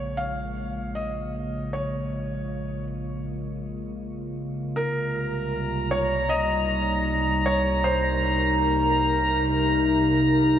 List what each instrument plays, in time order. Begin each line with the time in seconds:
Already playing: sub bass A#1, ambient pad C#3 G#3 A#3 F4 A#4, felt piano C#5
0.17 felt piano F5
0.95 felt piano D#5
1.73 felt piano C#5
4.76 sub bass C2, ambient pad C3, felt piano A#4, synth texture A#5
5.20 ambient pad G3
5.91 felt piano C#5
6.29 felt piano D#5
6.50 ambient pad D#4
7.46 felt piano C#5
7.57 ambient pad A#4
7.84 felt piano C5